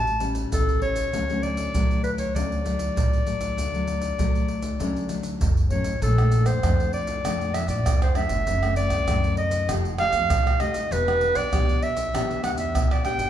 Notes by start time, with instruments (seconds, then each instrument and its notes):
Already playing: upright bass A1, nylon-string guitar A2, clarinet A5
0.07 pandeiro, maracas
0.20 nylon-string guitar G3 C#4 E4, pandeiro, maracas
0.35 pandeiro, maracas, surdo
0.52 upright bass A1, nylon-string guitar E3, clarinet A4, pandeiro, maracas, surdo
0.69 pandeiro, maracas
0.81 nylon-string guitar G3 C#4 E4, clarinet C#5, pandeiro
0.96 pandeiro, maracas, surdo
1.13 upright bass D2, nylon-string guitar D3 F#3 A3 C#4, pandeiro, maracas, surdo
1.29 nylon-string guitar F#3 A3 C#4, pandeiro, maracas
1.43 clarinet D5, pandeiro
1.57 pandeiro, maracas, surdo
1.74 upright bass D2, nylon-string guitar A2 F#3 A3, pandeiro, maracas, surdo
1.91 pandeiro, maracas
2.04 clarinet B4, pandeiro, maracas
2.18 clarinet C#5, pandeiro, maracas, surdo
2.35 upright bass D2, nylon-string guitar D3 F#3 A3 C#4, clarinet D5, pandeiro, maracas, surdo
2.52 pandeiro, maracas
2.64 nylon-string guitar F#3 A3, pandeiro, maracas, surdo
2.79 pandeiro, maracas, surdo
2.96 upright bass A1, nylon-string guitar A2, pandeiro, maracas, surdo
3.13 pandeiro, maracas
3.26 nylon-string guitar F#3 A3, pandeiro, maracas
3.41 pandeiro, maracas, surdo
3.57 upright bass D2, nylon-string guitar D3, pandeiro, maracas, surdo
3.73 nylon-string guitar F#3 A3, pandeiro, maracas
3.87 pandeiro, maracas
4.02 pandeiro, maracas, surdo
4.18 upright bass D2, nylon-string guitar A2 F#3 A3, pandeiro, maracas, surdo
4.35 pandeiro, maracas
4.48 pandeiro
4.62 pandeiro, maracas, surdo
4.79 upright bass D2, nylon-string guitar D3 F#3 A3 C#4, pandeiro, maracas, surdo
4.96 pandeiro, maracas
5.09 nylon-string guitar F#3 A3, pandeiro, maracas, surdo
5.23 pandeiro, maracas, surdo
5.40 upright bass F#1, nylon-string guitar A2, pandeiro, maracas, surdo
5.57 pandeiro, maracas
5.70 upright bass A1, nylon-string guitar F#3 A3 C#4, clarinet C#5, pandeiro
5.84 pandeiro, maracas, surdo
6.02 upright bass A#1, nylon-string guitar A#2 F3 A3 D4, clarinet A4, pandeiro, maracas, surdo
6.18 nylon-string guitar F3 A3 D4, pandeiro, tamborim, maracas
6.32 pandeiro, maracas
6.45 upright bass F2, clarinet C5, pandeiro, tamborim, maracas, surdo
6.63 upright bass F2, nylon-string guitar F2 F3 A3 D4, pandeiro, tamborim, maracas, surdo
6.80 pandeiro, maracas
6.93 clarinet D5, pandeiro
7.07 pandeiro, maracas, surdo
7.24 upright bass F2, nylon-string guitar A#2 F3 A3 D4, pandeiro, tamborim, maracas, surdo
7.41 pandeiro, maracas
7.54 nylon-string guitar F3 A3 D4, clarinet E5, pandeiro, tamborim, maracas
7.68 upright bass A#2, clarinet D5, pandeiro, maracas, surdo
7.85 upright bass F2, nylon-string guitar F2, pandeiro, tamborim, maracas, surdo
8.02 clarinet C5, pandeiro, tamborim, maracas
8.15 nylon-string guitar F3 A3 D4, clarinet E5, pandeiro, tamborim
8.29 upright bass G1, pandeiro, maracas, surdo
8.47 upright bass F#1, nylon-string guitar F#2 E3 A3 C4, pandeiro, maracas, surdo
8.63 nylon-string guitar E3 A3 C4, pandeiro, tamborim, maracas
8.76 clarinet D5, pandeiro, maracas
8.90 upright bass C2, pandeiro, tamborim, maracas, surdo
9.08 upright bass C2, nylon-string guitar F#2 E3 A3 C4, pandeiro, tamborim, maracas, surdo
9.24 pandeiro, maracas
9.37 clarinet D#5, pandeiro
9.51 pandeiro, maracas, surdo
9.69 upright bass F1, nylon-string guitar F3 A3 D#4 G4, pandeiro, tamborim, maracas, surdo
9.85 pandeiro, maracas
9.98 nylon-string guitar A3 D#4 G4, clarinet F5, pandeiro, tamborim
10.12 upright bass F2, pandeiro, maracas, surdo
10.30 upright bass C2, nylon-string guitar C3, pandeiro, tamborim, maracas, surdo
10.47 pandeiro, tamborim, maracas
10.60 nylon-string guitar A3 D#4 G4, clarinet D#5, pandeiro, tamborim
10.73 upright bass C2, pandeiro, maracas, surdo
10.91 upright bass E1, nylon-string guitar E3 B3 D4 G4, clarinet B4, pandeiro, maracas, surdo
11.07 nylon-string guitar B3 D4 G4, pandeiro, tamborim, maracas
11.21 pandeiro
11.35 upright bass B1, clarinet D5, pandeiro, tamborim, maracas, surdo
11.52 upright bass B1, nylon-string guitar B2 B3 D4 G4, pandeiro, tamborim, maracas, surdo
11.69 pandeiro, maracas
11.82 clarinet E5, pandeiro
11.97 pandeiro, maracas, surdo
12.13 upright bass B1, nylon-string guitar E3 B3 D4 G4, pandeiro, tamborim, maracas, surdo
12.31 pandeiro, maracas
12.43 nylon-string guitar B3 D4 G4, clarinet F#5, pandeiro, tamborim, maracas, surdo
12.57 upright bass E2, clarinet E5, pandeiro, maracas, surdo
12.75 upright bass B1, nylon-string guitar B2, pandeiro, tamborim, maracas, surdo
12.91 clarinet D5, pandeiro, tamborim, maracas
13.04 nylon-string guitar B3 D4 G4, clarinet G5, pandeiro, tamborim, maracas
13.18 upright bass G1, pandeiro, maracas, surdo